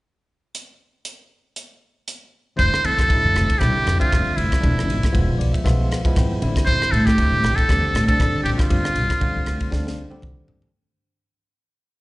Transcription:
0.55 closed hi-hat
1.05 closed hi-hat
1.56 closed hi-hat
2.08 closed hi-hat
2.56 F1 D3 G3 C4 E4 C5, kick, ride
2.74 cross-stick
2.84 F2 A4, ride
2.99 kick, cross-stick, ride
3.08 A1 D3 G3 C4 E4, kick, ride
3.24 F2
3.35 F1, cross-stick, ride
3.50 kick, ride
3.58 C2 D3 G3 C4 E4 G4, kick, cross-stick, ride
3.75 muted upright bass stroke
3.86 F2, cross-stick, ride
3.99 D3 G3 C4 F4 E5, kick, ride
4.12 F1, kick, cross-stick, ride
4.36 F1 E4, ride
4.52 kick, cross-stick, ride
4.61 E1 F3 G#3 B3 D4, kick, ride
4.79 cross-stick
4.88 G#1, ride
5.03 muted upright bass stroke, kick, cross-stick, ride
5.12 E1 F3 G#3 B3 F4, kick, ride
5.29 B1
5.38 B1 D5, ride
5.53 E5, kick, ride
5.64 B1 F3 G#3 B3 F4 E5, kick, cross-stick, ride
5.89 F5, cross-stick, ride
6.04 F3 G#3 B3 E4, muted upright bass stroke, kick, ride
6.16 G#1 G5, kick, cross-stick, ride
6.31 muted upright bass stroke
6.42 A1 D3 G3 C4 E4, ride
6.56 kick, cross-stick, ride
6.66 A1 C5, kick, ride
6.81 muted upright bass stroke, cross-stick
6.91 A2 A4, ride
7.06 G4, kick, cross-stick, ride
7.18 D2 D3 G3 C4 E4, kick, ride
7.31 A2
7.43 A1, cross-stick, ride
7.56 A4, muted upright bass stroke, kick, ride
7.68 E2 D3 G3 C4 G4, kick, cross-stick, ride
7.83 muted upright bass stroke
7.94 A2, cross-stick, ride
8.08 D3 G3 C4 D4 A4, kick, ride
8.20 A1, kick, cross-stick, ride
8.34 muted upright bass stroke
8.44 A1 G4, ride
8.58 F4, muted upright bass stroke, kick, cross-stick, ride
8.70 G1 D3 G3 C4 F4, kick, ride
8.85 cross-stick
8.95 C2, ride
9.10 muted upright bass stroke, kick, cross-stick, ride
9.20 G1 D3 G3 C4 F4, kick, ride
9.36 D2
9.46 D2, cross-stick, ride
9.60 kick, ride
9.70 D2 D3 G3 C4 D4, kick, snare
9.87 snare
10.10 D3 G3 C4 G4, muted upright bass stroke, high tom
10.22 C2, kick, mid tom
10.37 muted upright bass stroke
10.48 G1, floor tom
10.62 floor tom

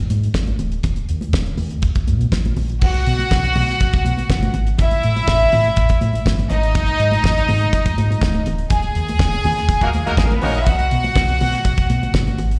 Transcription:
0.10 G#2, closed hi-hat, high conga
0.23 closed hi-hat
0.34 G#1, kick, snare, muted conga, high conga
0.47 closed hi-hat, muted conga, high conga
0.59 D1, closed hi-hat, low conga
0.72 closed hi-hat
0.83 D#1, kick, closed hi-hat, low conga
0.96 closed hi-hat, muted conga
1.09 D#2, closed hi-hat
1.21 closed hi-hat, high conga
1.33 D#1, kick, snare, muted conga
1.46 closed hi-hat, muted conga
1.57 D#2, open hi-hat, high conga, low conga
1.71 closed hi-hat
1.82 B1, kick, closed hi-hat, muted conga
1.95 kick, closed hi-hat, muted conga
2.07 B2, closed hi-hat, high conga
2.21 closed hi-hat
2.32 A1, kick, snare, high conga
2.45 closed hi-hat, muted conga, high conga
2.56 A#1, open hi-hat, low conga
2.70 closed hi-hat
2.81 B1 F#4 F#5, kick, crash, muted conga, low conga
2.94 closed hi-hat, muted conga
3.06 B2, closed hi-hat
3.19 closed hi-hat, high conga
3.31 B1, kick, snare
3.44 closed hi-hat
3.56 B2, open hi-hat, high conga, low conga
3.68 snare, closed hi-hat
3.80 B1, kick, closed hi-hat
3.93 kick, closed hi-hat, muted conga
4.05 B2, closed hi-hat, high conga
4.17 closed hi-hat, high conga
4.30 G1, kick, snare, high conga
4.43 closed hi-hat, muted conga, high conga
4.54 G#1, closed hi-hat, low conga
4.67 closed hi-hat
4.78 A1 E4 E5, kick, closed hi-hat, muted conga, low conga
4.91 closed hi-hat, muted conga
5.03 A2, closed hi-hat
5.16 closed hi-hat, high conga
5.28 A1, kick, snare, muted conga
5.40 closed hi-hat
5.52 A2, open hi-hat, high conga, low conga
5.65 closed hi-hat
5.76 A1, kick, closed hi-hat, muted conga
5.89 kick, closed hi-hat, muted conga
6.01 A2, closed hi-hat, high conga
6.13 closed hi-hat, high conga
6.26 G1, kick, snare, high conga
6.39 closed hi-hat, muted conga, high conga
6.49 G#1 D#4 D#5, closed hi-hat, low conga
6.63 closed hi-hat
6.75 kick, closed hi-hat, muted conga, low conga
6.87 closed hi-hat, muted conga
7.00 G#2, closed hi-hat
7.12 closed hi-hat, high conga
7.24 G#1, kick, snare, muted conga
7.38 closed hi-hat
7.49 G#2, open hi-hat, high conga, low conga
7.62 closed hi-hat
7.73 G#1, kick, closed hi-hat, muted conga
7.86 kick, closed hi-hat, muted conga
7.97 G#2, closed hi-hat, high conga
8.11 closed hi-hat, high conga
8.22 C#1, kick, snare, muted conga, high conga
8.34 closed hi-hat, high conga
8.46 D1, closed hi-hat, low conga
8.58 closed hi-hat
8.70 D#1 G#4 G#5, kick, closed hi-hat, low conga
8.82 closed hi-hat, muted conga
8.95 D#2, closed hi-hat
9.08 closed hi-hat, high conga
9.19 D#1, kick, snare, muted conga
9.32 closed hi-hat, muted conga
9.44 D#2, open hi-hat, high conga, low conga
9.57 snare, closed hi-hat
9.69 D#1, kick, closed hi-hat, muted conga
9.81 A#3 D#4 F#4 A#4, kick, closed hi-hat, muted conga
9.93 D#2, closed hi-hat, high conga
10.06 A#3 D#4 F#4 A#4, closed hi-hat, high conga
10.16 A1 G#3 G#4, kick, snare, muted conga, high conga
10.24 A#3 A#4
10.30 B3 B4, closed hi-hat, muted conga, high conga
10.41 A#1 A#3 C#4 D#4 F#4 A#4 C#5, open hi-hat, low conga
10.50 D#4 D#5
10.55 E4 E5, closed hi-hat
10.65 B1 F#4 F#5, kick, closed hi-hat, low conga
10.79 closed hi-hat, muted conga
10.91 B2, closed hi-hat
11.04 closed hi-hat, high conga
11.15 B1, kick, snare, muted conga
11.28 closed hi-hat, muted conga
11.40 B2, open hi-hat, high conga, low conga
11.52 snare, closed hi-hat
11.65 B1, kick, closed hi-hat, muted conga
11.77 kick, closed hi-hat
11.90 B2, closed hi-hat, high conga
12.03 closed hi-hat, high conga
12.14 G1, kick, snare, muted conga, high conga
12.27 closed hi-hat, high conga
12.38 G#1, closed hi-hat, low conga
12.51 closed hi-hat

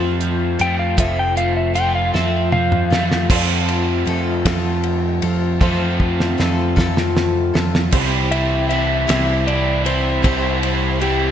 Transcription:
Already playing: F2 F3 A3 C4 F4 G4 A4 C5
0.21 F3, closed hi-hat
0.59 F2 A3 C4 F4 A4 G5, closed hi-hat
0.79 F5
0.97 F1 F2 F3 A3 C4 F4 A4 C5 E5, kick, closed hi-hat
1.19 G5
1.36 A3 F5, closed hi-hat
1.57 E5
1.74 F3 C4 F4 A4 G5, closed hi-hat
1.95 F5
2.13 F2 F3 C4 F4 A4 E5, snare
2.52 F3 F5, mid tom
2.72 mid tom
2.90 F2 A3 C4 F4 A4, snare
3.11 snare
3.29 F2 C3 F3 A3 C4 F4 A4 C5, kick, crash
3.68 ride
4.05 F2 F3 C4 F4 A4, ride
4.45 F2 F3 C4 F4 A4, kick, snare, ride
4.83 ride
5.22 F2 C4 F4 A4, ride
5.60 F2 C3 F3 A3 C4 F4 A4 C5, kick, high tom
6.00 kick
6.20 snare
6.38 F2 F3 C4 F4 A4, snare
6.76 F2 F3 C4 F4 A4, kick, snare
6.97 snare
7.17 snare
7.54 F2 C4 F4 A4, snare
7.75 snare
7.91 C2 C3 E3 G3 C4 E4 G4 C5, kick, crash
7.95 E4
8.30 G3 C4 E4 E5, ride
8.68 E3 G3 C4 E4 G4 E5, ride
9.07 C2 C3 G3 C4 E4 G4, snare, ride
9.46 E3 G3 C4 E4 D5, ride
9.84 G3 C4 E4 G4 C5, ride
10.23 C2 C3 E3 G3 C4 E4 G4 C5, kick, ride
10.62 G3 C4 E4, ride
11.00 E3 G3 C4 E4 G4, ride

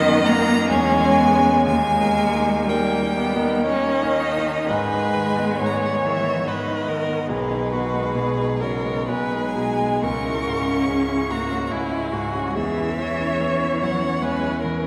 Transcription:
Already playing: F#2 D#3 A#3 B3 D#4 A#4 D#5
0.09 A#3 D#4 A#4
0.25 A#3 A#5
0.38 A#3 D#4 A#4
0.69 E2 G#3 C#4 G#5
1.00 G#3 C#4 C#5
1.20 B3
1.33 G#3 C#4 C#5
1.67 D#2 G#3 A#3 G#5
2.01 A#3 D#4 A#4
2.35 A#3 D#4 A#4
2.67 G3 A#3 D#4 A#4 G5
3.02 A#3 D#4 A#4
3.17 B3
3.35 A#3 D#4 A#4
3.66 D#3 A#3 C#4 D#4 A#4 D#5
4.02 A#3 D#4 A#4
4.20 D#4
4.37 A#3 D#4 A#4
4.69 G#2 G#3 B4 G#5
4.94 D#4
5.15 D#3
5.37 B3
5.60 G#2 C#5
5.66 A#5
5.78 G#5
5.82 D#4
5.86 F#5
5.95 G#5
6.03 D#3 E3 E5
6.25 B3
6.47 G#2 D#3 B4 D#5
6.67 D#4
6.88 D#3 A#4
7.08 B3
7.28 B1 B2 G#4 B4
7.51 D#4
7.72 B2 F#4
7.93 G#3
8.15 B1 G#4
8.38 D#4
8.60 B2 C#3 A#4 C#5
8.84 G#3
9.08 B1 G#3 B4 G#5
9.32 D#4
9.55 B2 G#4
9.80 G#3
10.03 C#2 C#4 A#4 C#6
10.25 E4
10.47 G#2
10.68 C#4
10.88 C#2 G#4
11.09 E4
11.30 G#2 A#3 F#4 A#5
11.50 C#4
11.65 A#5
11.70 C#2 G#3 E4 G#5
11.92 E4
12.13 G#2 F#4
12.35 C#4
12.55 E2 E3 G#4 E5
12.78 E4
12.98 E3 C#5
13.20 C#4
13.40 E2
13.61 E4
13.82 E3 F#3 F#5
14.02 C#4
14.22 E2 G#3 B4 G#5
14.44 E4
14.62 E3 A#4
14.84 C#4

